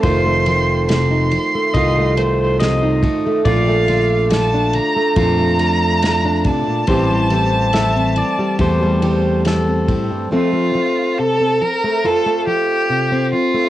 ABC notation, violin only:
X:1
M:4/4
L:1/8
Q:1/4=70
K:F
V:1 name="Violin"
c'2 c'4- c' z | f2 a b b3 a- | a6 z2 | F2 A B A G2 F |]